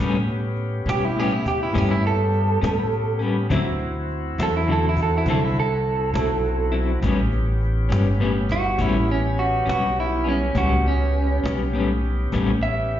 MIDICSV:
0, 0, Header, 1, 6, 480
1, 0, Start_track
1, 0, Tempo, 587084
1, 2862, Time_signature, 12, 3, 24, 8
1, 10628, End_track
2, 0, Start_track
2, 0, Title_t, "Clean electric guitar"
2, 0, Program_c, 0, 27
2, 732, Note_on_c, 0, 67, 90
2, 857, Note_off_c, 0, 67, 0
2, 857, Note_on_c, 0, 64, 76
2, 977, Note_off_c, 0, 64, 0
2, 977, Note_on_c, 0, 67, 80
2, 1088, Note_off_c, 0, 67, 0
2, 1088, Note_on_c, 0, 64, 77
2, 1192, Note_off_c, 0, 64, 0
2, 1208, Note_on_c, 0, 67, 74
2, 1312, Note_off_c, 0, 67, 0
2, 1332, Note_on_c, 0, 64, 71
2, 1454, Note_off_c, 0, 64, 0
2, 1454, Note_on_c, 0, 67, 76
2, 1555, Note_off_c, 0, 67, 0
2, 1563, Note_on_c, 0, 64, 74
2, 1669, Note_off_c, 0, 64, 0
2, 1691, Note_on_c, 0, 69, 85
2, 2607, Note_off_c, 0, 69, 0
2, 3620, Note_on_c, 0, 69, 91
2, 3717, Note_off_c, 0, 69, 0
2, 3734, Note_on_c, 0, 64, 77
2, 3835, Note_off_c, 0, 64, 0
2, 3861, Note_on_c, 0, 69, 73
2, 3958, Note_off_c, 0, 69, 0
2, 3998, Note_on_c, 0, 64, 72
2, 4087, Note_off_c, 0, 64, 0
2, 4109, Note_on_c, 0, 69, 68
2, 4202, Note_off_c, 0, 69, 0
2, 4232, Note_on_c, 0, 64, 83
2, 4324, Note_off_c, 0, 64, 0
2, 4334, Note_on_c, 0, 69, 84
2, 4435, Note_off_c, 0, 69, 0
2, 4455, Note_on_c, 0, 64, 74
2, 4555, Note_off_c, 0, 64, 0
2, 4575, Note_on_c, 0, 69, 86
2, 5491, Note_off_c, 0, 69, 0
2, 6965, Note_on_c, 0, 66, 99
2, 7188, Note_off_c, 0, 66, 0
2, 7207, Note_on_c, 0, 64, 77
2, 7429, Note_off_c, 0, 64, 0
2, 7452, Note_on_c, 0, 61, 75
2, 7672, Note_off_c, 0, 61, 0
2, 7678, Note_on_c, 0, 66, 84
2, 7905, Note_off_c, 0, 66, 0
2, 7924, Note_on_c, 0, 66, 77
2, 8148, Note_off_c, 0, 66, 0
2, 8176, Note_on_c, 0, 64, 84
2, 8395, Note_off_c, 0, 64, 0
2, 8409, Note_on_c, 0, 61, 70
2, 8631, Note_off_c, 0, 61, 0
2, 8648, Note_on_c, 0, 66, 84
2, 8871, Note_off_c, 0, 66, 0
2, 8894, Note_on_c, 0, 61, 87
2, 9347, Note_off_c, 0, 61, 0
2, 10323, Note_on_c, 0, 76, 80
2, 10628, Note_off_c, 0, 76, 0
2, 10628, End_track
3, 0, Start_track
3, 0, Title_t, "Tonewheel organ"
3, 0, Program_c, 1, 16
3, 0, Note_on_c, 1, 59, 63
3, 0, Note_on_c, 1, 61, 63
3, 1, Note_on_c, 1, 67, 60
3, 2839, Note_off_c, 1, 59, 0
3, 2840, Note_off_c, 1, 61, 0
3, 2840, Note_off_c, 1, 67, 0
3, 2872, Note_on_c, 1, 60, 65
3, 2875, Note_on_c, 1, 64, 62
3, 2876, Note_on_c, 1, 66, 60
3, 5719, Note_off_c, 1, 60, 0
3, 5720, Note_off_c, 1, 64, 0
3, 5721, Note_off_c, 1, 66, 0
3, 5754, Note_on_c, 1, 59, 65
3, 5755, Note_on_c, 1, 61, 63
3, 5758, Note_on_c, 1, 67, 66
3, 8604, Note_off_c, 1, 59, 0
3, 8604, Note_off_c, 1, 61, 0
3, 8606, Note_off_c, 1, 67, 0
3, 8623, Note_on_c, 1, 67, 63
3, 8627, Note_on_c, 1, 61, 66
3, 8628, Note_on_c, 1, 59, 64
3, 10628, Note_off_c, 1, 59, 0
3, 10628, Note_off_c, 1, 61, 0
3, 10628, Note_off_c, 1, 67, 0
3, 10628, End_track
4, 0, Start_track
4, 0, Title_t, "Clean electric guitar"
4, 0, Program_c, 2, 27
4, 0, Note_on_c, 2, 45, 71
4, 0, Note_on_c, 2, 55, 78
4, 2, Note_on_c, 2, 59, 72
4, 7, Note_on_c, 2, 61, 76
4, 131, Note_off_c, 2, 45, 0
4, 135, Note_off_c, 2, 55, 0
4, 137, Note_off_c, 2, 59, 0
4, 139, Note_off_c, 2, 61, 0
4, 710, Note_on_c, 2, 61, 47
4, 723, Note_on_c, 2, 59, 44
4, 735, Note_on_c, 2, 55, 41
4, 851, Note_off_c, 2, 61, 0
4, 857, Note_off_c, 2, 59, 0
4, 863, Note_off_c, 2, 55, 0
4, 948, Note_on_c, 2, 45, 52
4, 959, Note_on_c, 2, 55, 54
4, 969, Note_on_c, 2, 59, 55
4, 976, Note_on_c, 2, 61, 62
4, 1090, Note_off_c, 2, 45, 0
4, 1095, Note_off_c, 2, 55, 0
4, 1100, Note_off_c, 2, 59, 0
4, 1103, Note_off_c, 2, 61, 0
4, 1416, Note_on_c, 2, 45, 70
4, 1426, Note_on_c, 2, 55, 69
4, 1427, Note_on_c, 2, 59, 71
4, 1432, Note_on_c, 2, 61, 75
4, 1563, Note_off_c, 2, 45, 0
4, 1568, Note_off_c, 2, 55, 0
4, 1569, Note_off_c, 2, 59, 0
4, 1571, Note_off_c, 2, 61, 0
4, 2139, Note_on_c, 2, 61, 48
4, 2153, Note_on_c, 2, 59, 47
4, 2166, Note_on_c, 2, 55, 40
4, 2284, Note_off_c, 2, 61, 0
4, 2291, Note_off_c, 2, 59, 0
4, 2298, Note_off_c, 2, 55, 0
4, 2610, Note_on_c, 2, 61, 53
4, 2632, Note_on_c, 2, 59, 51
4, 2641, Note_on_c, 2, 55, 43
4, 2759, Note_off_c, 2, 61, 0
4, 2771, Note_off_c, 2, 59, 0
4, 2775, Note_off_c, 2, 55, 0
4, 2857, Note_on_c, 2, 50, 70
4, 2867, Note_on_c, 2, 54, 77
4, 2870, Note_on_c, 2, 60, 80
4, 2875, Note_on_c, 2, 64, 78
4, 3003, Note_off_c, 2, 50, 0
4, 3008, Note_off_c, 2, 54, 0
4, 3009, Note_off_c, 2, 60, 0
4, 3012, Note_off_c, 2, 64, 0
4, 3590, Note_on_c, 2, 64, 51
4, 3605, Note_on_c, 2, 60, 43
4, 3612, Note_on_c, 2, 54, 38
4, 3729, Note_off_c, 2, 64, 0
4, 3737, Note_off_c, 2, 60, 0
4, 3741, Note_off_c, 2, 54, 0
4, 3825, Note_on_c, 2, 50, 51
4, 3834, Note_on_c, 2, 54, 58
4, 3843, Note_on_c, 2, 60, 59
4, 3850, Note_on_c, 2, 64, 65
4, 3967, Note_off_c, 2, 50, 0
4, 3972, Note_off_c, 2, 54, 0
4, 3976, Note_off_c, 2, 60, 0
4, 3979, Note_off_c, 2, 64, 0
4, 4307, Note_on_c, 2, 50, 68
4, 4308, Note_on_c, 2, 54, 76
4, 4317, Note_on_c, 2, 60, 79
4, 4320, Note_on_c, 2, 64, 75
4, 4448, Note_off_c, 2, 50, 0
4, 4449, Note_off_c, 2, 54, 0
4, 4453, Note_off_c, 2, 60, 0
4, 4455, Note_off_c, 2, 64, 0
4, 5023, Note_on_c, 2, 64, 47
4, 5038, Note_on_c, 2, 60, 46
4, 5053, Note_on_c, 2, 54, 38
4, 5166, Note_off_c, 2, 64, 0
4, 5174, Note_off_c, 2, 60, 0
4, 5181, Note_off_c, 2, 54, 0
4, 5492, Note_on_c, 2, 64, 58
4, 5501, Note_on_c, 2, 60, 49
4, 5514, Note_on_c, 2, 54, 43
4, 5641, Note_off_c, 2, 64, 0
4, 5646, Note_off_c, 2, 60, 0
4, 5652, Note_off_c, 2, 54, 0
4, 5737, Note_on_c, 2, 45, 75
4, 5745, Note_on_c, 2, 55, 81
4, 5752, Note_on_c, 2, 59, 88
4, 5756, Note_on_c, 2, 61, 83
4, 5884, Note_off_c, 2, 45, 0
4, 5888, Note_off_c, 2, 55, 0
4, 5891, Note_off_c, 2, 59, 0
4, 5893, Note_off_c, 2, 61, 0
4, 6450, Note_on_c, 2, 61, 53
4, 6466, Note_on_c, 2, 59, 51
4, 6477, Note_on_c, 2, 55, 48
4, 6601, Note_off_c, 2, 61, 0
4, 6609, Note_off_c, 2, 59, 0
4, 6614, Note_off_c, 2, 55, 0
4, 6692, Note_on_c, 2, 45, 59
4, 6707, Note_on_c, 2, 55, 64
4, 6713, Note_on_c, 2, 59, 72
4, 6721, Note_on_c, 2, 61, 62
4, 6842, Note_off_c, 2, 45, 0
4, 6849, Note_off_c, 2, 55, 0
4, 6852, Note_off_c, 2, 59, 0
4, 6856, Note_off_c, 2, 61, 0
4, 7178, Note_on_c, 2, 45, 70
4, 7180, Note_on_c, 2, 55, 79
4, 7185, Note_on_c, 2, 59, 81
4, 7194, Note_on_c, 2, 61, 80
4, 7325, Note_off_c, 2, 45, 0
4, 7327, Note_off_c, 2, 55, 0
4, 7329, Note_off_c, 2, 59, 0
4, 7334, Note_off_c, 2, 61, 0
4, 7895, Note_on_c, 2, 61, 49
4, 7912, Note_on_c, 2, 59, 44
4, 7925, Note_on_c, 2, 55, 39
4, 8044, Note_off_c, 2, 61, 0
4, 8053, Note_off_c, 2, 59, 0
4, 8059, Note_off_c, 2, 55, 0
4, 8374, Note_on_c, 2, 61, 48
4, 8392, Note_on_c, 2, 59, 44
4, 8403, Note_on_c, 2, 55, 39
4, 8524, Note_off_c, 2, 61, 0
4, 8533, Note_off_c, 2, 59, 0
4, 8539, Note_off_c, 2, 55, 0
4, 8624, Note_on_c, 2, 45, 65
4, 8634, Note_on_c, 2, 55, 75
4, 8642, Note_on_c, 2, 59, 74
4, 8644, Note_on_c, 2, 61, 82
4, 8769, Note_off_c, 2, 45, 0
4, 8775, Note_off_c, 2, 55, 0
4, 8779, Note_off_c, 2, 59, 0
4, 8780, Note_off_c, 2, 61, 0
4, 9349, Note_on_c, 2, 61, 48
4, 9368, Note_on_c, 2, 59, 45
4, 9378, Note_on_c, 2, 55, 37
4, 9493, Note_off_c, 2, 61, 0
4, 9502, Note_off_c, 2, 59, 0
4, 9507, Note_off_c, 2, 55, 0
4, 9586, Note_on_c, 2, 45, 58
4, 9593, Note_on_c, 2, 55, 66
4, 9605, Note_on_c, 2, 59, 65
4, 9613, Note_on_c, 2, 61, 69
4, 9731, Note_off_c, 2, 45, 0
4, 9735, Note_off_c, 2, 55, 0
4, 9741, Note_off_c, 2, 59, 0
4, 9745, Note_off_c, 2, 61, 0
4, 10075, Note_on_c, 2, 45, 81
4, 10084, Note_on_c, 2, 55, 86
4, 10088, Note_on_c, 2, 59, 84
4, 10096, Note_on_c, 2, 61, 86
4, 10216, Note_off_c, 2, 45, 0
4, 10221, Note_off_c, 2, 55, 0
4, 10223, Note_off_c, 2, 59, 0
4, 10227, Note_off_c, 2, 61, 0
4, 10628, End_track
5, 0, Start_track
5, 0, Title_t, "Upright bass"
5, 0, Program_c, 3, 32
5, 0, Note_on_c, 3, 45, 76
5, 687, Note_off_c, 3, 45, 0
5, 701, Note_on_c, 3, 47, 77
5, 1400, Note_off_c, 3, 47, 0
5, 1435, Note_on_c, 3, 43, 79
5, 2126, Note_off_c, 3, 43, 0
5, 2146, Note_on_c, 3, 45, 79
5, 2842, Note_off_c, 3, 45, 0
5, 2865, Note_on_c, 3, 38, 76
5, 3561, Note_off_c, 3, 38, 0
5, 3583, Note_on_c, 3, 40, 80
5, 4280, Note_off_c, 3, 40, 0
5, 4298, Note_on_c, 3, 36, 75
5, 4998, Note_off_c, 3, 36, 0
5, 5017, Note_on_c, 3, 35, 89
5, 5718, Note_off_c, 3, 35, 0
5, 5742, Note_on_c, 3, 33, 84
5, 6442, Note_off_c, 3, 33, 0
5, 6460, Note_on_c, 3, 31, 85
5, 7161, Note_off_c, 3, 31, 0
5, 7183, Note_on_c, 3, 33, 80
5, 7883, Note_off_c, 3, 33, 0
5, 7905, Note_on_c, 3, 35, 84
5, 8605, Note_off_c, 3, 35, 0
5, 8630, Note_on_c, 3, 37, 82
5, 9328, Note_off_c, 3, 37, 0
5, 9352, Note_on_c, 3, 35, 77
5, 10049, Note_off_c, 3, 35, 0
5, 10075, Note_on_c, 3, 33, 75
5, 10628, Note_off_c, 3, 33, 0
5, 10628, End_track
6, 0, Start_track
6, 0, Title_t, "Cajon"
6, 234, Note_on_c, 9, 38, 30
6, 316, Note_off_c, 9, 38, 0
6, 464, Note_on_c, 9, 38, 29
6, 546, Note_off_c, 9, 38, 0
6, 728, Note_on_c, 9, 38, 92
6, 810, Note_off_c, 9, 38, 0
6, 961, Note_on_c, 9, 38, 31
6, 1042, Note_off_c, 9, 38, 0
6, 1193, Note_on_c, 9, 36, 69
6, 1275, Note_off_c, 9, 36, 0
6, 1433, Note_on_c, 9, 36, 74
6, 1438, Note_on_c, 9, 38, 40
6, 1515, Note_off_c, 9, 36, 0
6, 1520, Note_off_c, 9, 38, 0
6, 1667, Note_on_c, 9, 38, 31
6, 1749, Note_off_c, 9, 38, 0
6, 1908, Note_on_c, 9, 38, 31
6, 1990, Note_off_c, 9, 38, 0
6, 2158, Note_on_c, 9, 38, 99
6, 2240, Note_off_c, 9, 38, 0
6, 2391, Note_on_c, 9, 38, 30
6, 2472, Note_off_c, 9, 38, 0
6, 2624, Note_on_c, 9, 38, 30
6, 2706, Note_off_c, 9, 38, 0
6, 2864, Note_on_c, 9, 36, 89
6, 2946, Note_off_c, 9, 36, 0
6, 3100, Note_on_c, 9, 38, 30
6, 3182, Note_off_c, 9, 38, 0
6, 3343, Note_on_c, 9, 38, 29
6, 3362, Note_off_c, 9, 38, 0
6, 3362, Note_on_c, 9, 38, 28
6, 3444, Note_off_c, 9, 38, 0
6, 3595, Note_on_c, 9, 38, 99
6, 3677, Note_off_c, 9, 38, 0
6, 3826, Note_on_c, 9, 38, 27
6, 3907, Note_off_c, 9, 38, 0
6, 4061, Note_on_c, 9, 36, 66
6, 4079, Note_on_c, 9, 38, 30
6, 4143, Note_off_c, 9, 36, 0
6, 4161, Note_off_c, 9, 38, 0
6, 4300, Note_on_c, 9, 36, 71
6, 4382, Note_off_c, 9, 36, 0
6, 4542, Note_on_c, 9, 38, 30
6, 4624, Note_off_c, 9, 38, 0
6, 4777, Note_on_c, 9, 38, 31
6, 4859, Note_off_c, 9, 38, 0
6, 5031, Note_on_c, 9, 38, 104
6, 5113, Note_off_c, 9, 38, 0
6, 5261, Note_on_c, 9, 38, 33
6, 5343, Note_off_c, 9, 38, 0
6, 5500, Note_on_c, 9, 38, 32
6, 5582, Note_off_c, 9, 38, 0
6, 5744, Note_on_c, 9, 36, 96
6, 5826, Note_off_c, 9, 36, 0
6, 5984, Note_on_c, 9, 38, 35
6, 6066, Note_off_c, 9, 38, 0
6, 6223, Note_on_c, 9, 38, 33
6, 6242, Note_off_c, 9, 38, 0
6, 6242, Note_on_c, 9, 38, 28
6, 6324, Note_off_c, 9, 38, 0
6, 6477, Note_on_c, 9, 38, 99
6, 6559, Note_off_c, 9, 38, 0
6, 6708, Note_on_c, 9, 38, 32
6, 6789, Note_off_c, 9, 38, 0
6, 6944, Note_on_c, 9, 36, 69
6, 7026, Note_off_c, 9, 36, 0
6, 7185, Note_on_c, 9, 36, 74
6, 7267, Note_off_c, 9, 36, 0
6, 7425, Note_on_c, 9, 38, 30
6, 7506, Note_off_c, 9, 38, 0
6, 7669, Note_on_c, 9, 38, 29
6, 7750, Note_off_c, 9, 38, 0
6, 7926, Note_on_c, 9, 38, 96
6, 8008, Note_off_c, 9, 38, 0
6, 8152, Note_on_c, 9, 38, 30
6, 8234, Note_off_c, 9, 38, 0
6, 8387, Note_on_c, 9, 38, 30
6, 8469, Note_off_c, 9, 38, 0
6, 8625, Note_on_c, 9, 36, 91
6, 8707, Note_off_c, 9, 36, 0
6, 8861, Note_on_c, 9, 38, 30
6, 8943, Note_off_c, 9, 38, 0
6, 9106, Note_on_c, 9, 38, 30
6, 9187, Note_off_c, 9, 38, 0
6, 9366, Note_on_c, 9, 38, 101
6, 9448, Note_off_c, 9, 38, 0
6, 9595, Note_on_c, 9, 38, 32
6, 9676, Note_off_c, 9, 38, 0
6, 9841, Note_on_c, 9, 38, 33
6, 9923, Note_off_c, 9, 38, 0
6, 10075, Note_on_c, 9, 36, 76
6, 10082, Note_on_c, 9, 38, 41
6, 10157, Note_off_c, 9, 36, 0
6, 10164, Note_off_c, 9, 38, 0
6, 10318, Note_on_c, 9, 38, 35
6, 10400, Note_off_c, 9, 38, 0
6, 10563, Note_on_c, 9, 38, 32
6, 10628, Note_off_c, 9, 38, 0
6, 10628, End_track
0, 0, End_of_file